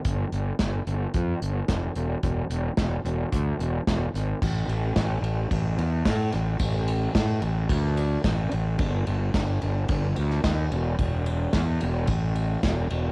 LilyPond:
<<
  \new Staff \with { instrumentName = "Fingered electric bass" } { \clef bass \time 4/4 \key e \phrygian \tempo 4 = 110 g,,8 g,,8 g,,8 g,,8 f,8 g,,8 f,,8 e,,8 | e,,8 e,,8 e,,8 e,,8 d,8 e,,8 e,,8 gis,,8 | a,,8 a,,8 a,,8 a,,8 a,,8 e,8 a,8 a,,8 | a,,4 a,8 a,,8 d,4 a,,8 a,,8 |
g,,8 g,,8 g,,8 g,,8 g,,8 d,8 dis,8 e,,8 | e,,4 e,8 e,,8 a,,4 e,,8 e,,8 | }
  \new DrumStaff \with { instrumentName = "Drums" } \drummode { \time 4/4 <hh bd>8 hh8 <hh bd sn>8 hh8 <hh bd>8 hh8 <hh bd sn>8 hh8 | <hh bd>8 hh8 <hh bd sn>8 hh8 <hh bd>8 hh8 <hh bd sn>8 <hh sn>8 | <cymc bd>8 cymr8 <bd cymr sn>8 cymr8 <bd cymr>8 cymr8 <bd cymr sn>8 <cymr sn>8 | <bd cymr>8 cymr8 <bd cymr sn>8 cymr8 <bd cymr>8 cymr8 <bd cymr sn>8 cymr8 |
<bd cymr>8 cymr8 <bd cymr sn>8 cymr8 <bd cymr>8 cymr16 sn16 <bd cymr sn>8 cymr8 | <bd cymr>8 cymr8 <bd cymr sn>8 cymr8 <bd cymr>8 cymr8 <bd cymr sn>8 cymr8 | }
>>